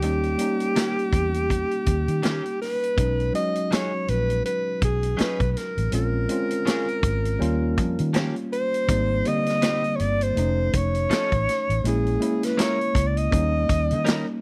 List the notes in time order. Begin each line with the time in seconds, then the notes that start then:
Already playing: G4
0.02 D#2 G3 A#3 C#4 D#4, closed hi-hat
0.23 closed hi-hat
0.38 G3 A#3 C#4 D#4, closed hi-hat
0.60 closed hi-hat
0.76 D#3 A#3 C#4 G4, snare, closed hi-hat
0.99 closed hi-hat
1.13 E2, kick, closed hi-hat
1.34 closed hi-hat
1.50 kick, closed hi-hat
1.71 closed hi-hat
1.86 D#2, kick, closed hi-hat
2.08 D#3, closed hi-hat
2.23 D#3 A#3 C#4 G4, snare, closed hi-hat
2.46 closed hi-hat
2.62 B4, snare, open hi-hat
2.84 closed hi-hat
2.97 B1 F#3 G#3 C#4 D#4, kick, closed hi-hat
3.20 closed hi-hat
3.33 F#3 G#3 C#4 F#4 D#5, closed hi-hat
3.55 closed hi-hat
3.71 F#3 C#4 D#4 G#4 C#5, snare, closed hi-hat
4.08 A#1 B4, closed hi-hat
4.30 closed hi-hat
4.45 B4, closed hi-hat
4.82 B1 G#4, kick, closed hi-hat
5.03 closed hi-hat
5.17 F#3 C#4 D#4 G#4 B4, muted fingered electric bass stroke, snare, closed hi-hat
5.40 B1, kick, closed hi-hat
5.52 B4
5.57 A#4, snare, closed hi-hat
5.78 A1, closed hi-hat
5.91 A#1 G#3 C4 C#4 F4 A#4, closed hi-hat
6.28 G#3 C4 C#4 F4, closed hi-hat
6.51 closed hi-hat
6.65 G#3 C#4 F4 G#4, snare, closed hi-hat
6.88 closed hi-hat
7.03 G#1, kick, closed hi-hat
7.25 closed hi-hat
7.39 D#2 G3 A#3 C#4 F4, closed hi-hat
7.78 F2, kick, closed hi-hat
7.99 D#3, closed hi-hat
8.13 F3 A#3 C#4 G4, snare, closed hi-hat
8.36 closed hi-hat
8.53 C5, closed hi-hat
8.74 closed hi-hat
8.88 G#1 G3 A#3 C4 D#4, kick, closed hi-hat
9.25 D3 G3 A#3 C4 D#5, closed hi-hat
9.46 snare, closed hi-hat
9.62 G3 C4 D#4 G4, snare, closed hi-hat
9.84 closed hi-hat
9.96 C#5, closed hi-hat
10.00 G1 D5
10.21 C5, closed hi-hat
10.36 F1 A3 C#4 D#4, closed hi-hat
10.73 F1 C#5, kick, closed hi-hat
10.95 closed hi-hat
11.10 F3 C#4 D#4 A4, muted fingered electric bass stroke, snare, closed hi-hat
11.32 A1, kick, closed hi-hat
11.49 snare, closed hi-hat
11.69 A1, closed hi-hat
11.84 A#1 G#3 A#3 C#4 E4 G#4, closed hi-hat
12.07 closed hi-hat
12.20 G#3 A#3 C#4 E4, closed hi-hat
12.43 B4, snare, closed hi-hat
12.57 G#3 C#4 E4 A#4 C#5, snare, closed hi-hat
12.81 closed hi-hat
12.95 C#2, kick, closed hi-hat
13.07 D5
13.17 D#5, closed hi-hat
13.31 D#2 G3 A#3 C#4 D#4, kick, closed hi-hat
13.69 D#2, kick, closed hi-hat
13.91 D#3, closed hi-hat
14.05 G3 C#4 D#4 A#4, snare, closed hi-hat